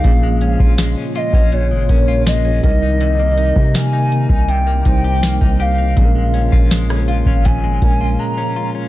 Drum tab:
HH |x-x-x-x-x-x-x-x-|x-x-x-x-x-x-x-x-|x-x-x-x-x-x-----|
SD |----o-------o---|----o-------o---|----or----------|
BD |o--o---o--o---o-|---o---o--o--o--|o--o---oo-o-----|